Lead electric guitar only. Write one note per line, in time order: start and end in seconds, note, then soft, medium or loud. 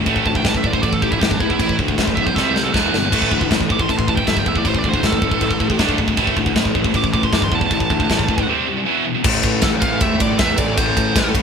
0.27 0.36 A5 loud
0.37 0.46 G5 loud
0.49 0.56 A5 medium
0.57 0.67 E5 medium
0.67 0.73 D5 medium
0.74 0.82 C5 loud
0.83 0.93 D5 medium
0.94 1.02 A4 medium
1.02 1.12 G4 medium
1.11 1.19 E4 medium
1.19 1.30 G4 medium
1.31 1.40 D4 medium
1.40 1.78 E4 loud
2.15 2.26 E5 loud
2.26 2.35 C5 loud
2.35 2.45 A4 medium
2.43 2.54 E5 medium
2.55 2.64 C5 medium
2.64 2.73 A4 medium
2.74 3.48 B4 loud
3.72 3.81 D6 loud
3.81 3.90 C6 loud
3.90 3.99 A5 medium
3.98 4.08 C6 loud
4.09 4.16 A5 loud
4.17 4.27 G5 loud
4.27 4.37 E5 loud
4.38 4.48 G5 loud
4.48 4.57 E5 loud
4.58 4.67 D5 loud
4.67 4.78 C5 medium
4.78 4.89 D5 medium
4.89 5.05 C5 loud
5.06 5.79 A4 loud
6.97 7.05 D6 loud
7.13 7.24 D6 loud
7.24 7.33 C6 medium
7.34 7.44 D6 loud
7.44 7.52 C6 loud
7.55 7.72 A5 loud
7.74 8.47 A5 loud
9.63 9.68 A4 medium
9.81 10.02 F5 loud
10.02 10.22 E5 loud
10.22 10.39 D5 medium
10.39 10.58 E5 loud
10.58 10.77 D5 loud
10.77 11.30 C5 medium